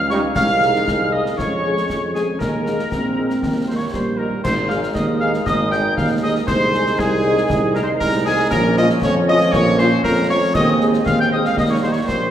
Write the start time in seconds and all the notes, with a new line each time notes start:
Already playing: C#2
0.10 G3 A#3 D#4 G4 C#5 C#6, snare
0.36 C2 G#3 D#4 F5 F6, concert bass drum, snare, crash
0.62 G#3 D#4 G#4, snare
0.75 snare
0.87 C2, concert bass drum, snare
1.12 G#3 D#4 G#4 D#5 D#6
1.26 snare
1.37 F2 G#3 C#4 C#5 C#6, concert bass drum, snare
1.64 G#3 C#4 G#4
1.77 snare
1.89 F2, concert bass drum, snare
2.14 G#3 C#4 G#4 G#5, snare
2.39 D#2 G#3 D#4 A#4 A#5, concert bass drum, snare
2.66 A#3 D#4 G#4, snare
2.79 snare
2.91 A#1 C4, concert bass drum, snare
3.18 A#3 D#4 G#4
3.30 snare
3.42 D#2, concert bass drum, snare
3.68 A#3 D#4 G4 C5 C6
3.75 C#5 C#6
3.92 A#1 G3 C5 C6, concert bass drum, snare
4.17 A#3 D#4 G4 A#4 A#5
4.43 G#1 G#3 D#4 C5 C6, concert bass drum, snare, crash
4.68 C4 D#4 G#4 F5 F6, snare
4.83 snare
4.94 D#2 D#5 D#6, concert bass drum, snare
5.20 C4 D#4 G#4 F5 F6
5.34 snare
5.46 G#1 D#5 D#6, concert bass drum, snare
5.71 C4 D#4 G#4 G5 G6, snare
5.97 D#2 F5 F6, concert bass drum, snare
6.22 C4 D#4 G#4 D#5 D#6
6.47 C2 G#3 D#4 C5 C6, concert bass drum, snare, crash
6.73 C4 D#4 G#4, snare
6.86 snare
6.98 C2 G#4 G#5, concert bass drum, snare
7.25 C4 D#4 G#4
7.37 snare
7.49 C2, concert bass drum, snare
7.75 C4 D#4 G#4 A#4 A#5, snare
7.83 C5 C6
8.00 C2 A#4 A#5, concert bass drum, snare
8.25 C4 D#4 G#4 G#5
8.51 A#1 F3 C#4 A#4 A#5, concert bass drum, snare, crash
8.77 C#4 F4 D#5 D#6, snare
8.89 snare
9.02 F2 C#5 C#6, concert bass drum, snare
9.28 C#4 F4 D#5 D#6
9.41 snare
9.52 A#1 C#5 C#6, concert bass drum, snare
9.78 C#4 F4 C5 C6, snare
10.03 F2 A#4 A#5, concert bass drum, snare
10.29 C#4 F4 C#5 C#6
10.54 D#2 G#3 C4 D#5 D#6, concert bass drum, snare, crash
10.80 C4 D#4 G#4, snare
10.93 snare
11.05 D#2 F5 F6, concert bass drum, snare
11.19 G5 G6
11.31 C4 D#4 G#4 D#5 D#6
11.44 F5 F6, snare
11.56 D#2 G3 D#4 D#5 D#6, concert bass drum, snare
11.70 C#5 C#6
11.83 A#3 D#4 G4 C5 C6
11.91 C#5 C#6
12.08 A#1 C5 C6, concert bass drum, snare